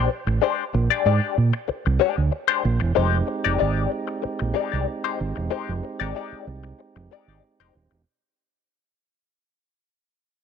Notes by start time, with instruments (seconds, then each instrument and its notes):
0.10 muted clean electric guitar stroke
0.27 fingered electric bass A1, muted clean electric guitar stroke
0.42 clean electric guitar G#3 D4 G4 C5
0.74 fingered electric bass A#1, muted clean electric guitar stroke
0.90 clean electric guitar G#3 D4 G4 D5
1.05 fingered electric bass G#2, clean electric guitar G#3 D4 G4 D5
1.37 fingered electric bass A#2, muted clean electric guitar stroke
1.53 muted clean electric guitar stroke
1.68 muted clean electric guitar stroke, muted fingered electric bass stroke
1.86 fingered electric bass C2, muted clean electric guitar stroke
2.00 clean electric guitar G#3 D4 G4 D5
2.17 fingered electric bass D2, muted clean electric guitar stroke
2.31 muted clean electric guitar stroke
2.48 clean electric guitar G#3 D4 G4 C5
2.64 fingered electric bass A#1, muted clean electric guitar stroke
2.80 fingered electric bass E1, muted clean electric guitar stroke
2.95 fingered electric bass F1, clean electric guitar G#3 D#4 G4 C5, tonewheel organ G#3 C4 D#4 G4
3.27 muted clean electric guitar stroke
3.44 fingered electric bass F1, clean electric guitar G#3 D#4 G4 D5
3.58 fingered electric bass G#1, clean electric guitar G#3 D#4 G4 D5
3.91 muted clean electric guitar stroke
4.08 muted clean electric guitar stroke
4.22 muted clean electric guitar stroke, muted fingered electric bass stroke
4.39 fingered electric bass A#1, muted clean electric guitar stroke
4.54 clean electric guitar G#3 D#4 G4 D5
4.72 fingered electric bass C2, clean electric guitar G#3 D#4 G4 D5
4.87 muted clean electric guitar stroke
5.04 clean electric guitar G#3 D#4 G4 C5
5.19 fingered electric bass G#1, muted clean electric guitar stroke
5.36 fingered electric bass E1, muted clean electric guitar stroke
5.50 clean electric guitar G#3 D#4 G4 C5
5.69 fingered electric bass F1
5.83 muted clean electric guitar stroke
6.00 fingered electric bass G#1, clean electric guitar G#3 D#4 G4 D5
6.15 clean electric guitar G#3 D#4 G4 D5
6.32 muted fingered electric bass stroke
6.47 fingered electric bass C2, muted clean electric guitar stroke
6.64 muted clean electric guitar stroke
6.79 muted clean electric guitar stroke
6.96 fingered electric bass F1, muted clean electric guitar stroke
7.11 clean electric guitar G#3 D#4 G4 D5
7.28 fingered electric bass G#1, clean electric guitar G#3 D#4 G4 D5
7.43 muted clean electric guitar stroke
7.60 fingered electric bass F1, clean electric guitar G#3 D#4 G4 C5
7.75 fingered electric bass D#1, muted clean electric guitar stroke
7.91 fingered electric bass E1, muted clean electric guitar stroke